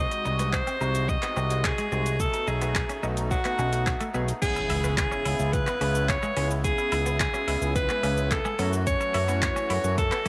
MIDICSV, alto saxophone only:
0, 0, Header, 1, 2, 480
1, 0, Start_track
1, 0, Key_signature, 4, "minor"
1, 0, Tempo, 555556
1, 1901, Time_signature, 4, 2, 24, 8
1, 8885, End_track
2, 0, Start_track
2, 0, Title_t, "Alto saxophone"
2, 0, Program_c, 0, 65
2, 0, Note_on_c, 0, 75, 115
2, 463, Note_on_c, 0, 72, 107
2, 476, Note_off_c, 0, 75, 0
2, 941, Note_on_c, 0, 75, 108
2, 954, Note_off_c, 0, 72, 0
2, 1422, Note_on_c, 0, 68, 97
2, 1435, Note_off_c, 0, 75, 0
2, 1902, Note_on_c, 0, 69, 100
2, 1915, Note_off_c, 0, 68, 0
2, 2142, Note_on_c, 0, 68, 89
2, 2155, Note_off_c, 0, 69, 0
2, 2628, Note_off_c, 0, 68, 0
2, 2860, Note_on_c, 0, 66, 116
2, 3546, Note_off_c, 0, 66, 0
2, 3821, Note_on_c, 0, 68, 103
2, 4267, Note_off_c, 0, 68, 0
2, 4301, Note_on_c, 0, 68, 100
2, 4778, Note_on_c, 0, 71, 106
2, 4791, Note_off_c, 0, 68, 0
2, 5260, Note_on_c, 0, 73, 107
2, 5273, Note_off_c, 0, 71, 0
2, 5620, Note_off_c, 0, 73, 0
2, 5740, Note_on_c, 0, 68, 110
2, 6187, Note_off_c, 0, 68, 0
2, 6222, Note_on_c, 0, 68, 99
2, 6668, Note_off_c, 0, 68, 0
2, 6701, Note_on_c, 0, 71, 108
2, 7185, Note_on_c, 0, 69, 100
2, 7198, Note_off_c, 0, 71, 0
2, 7543, Note_off_c, 0, 69, 0
2, 7664, Note_on_c, 0, 73, 114
2, 8109, Note_off_c, 0, 73, 0
2, 8146, Note_on_c, 0, 73, 101
2, 8590, Note_off_c, 0, 73, 0
2, 8626, Note_on_c, 0, 69, 99
2, 8885, Note_off_c, 0, 69, 0
2, 8885, End_track
0, 0, End_of_file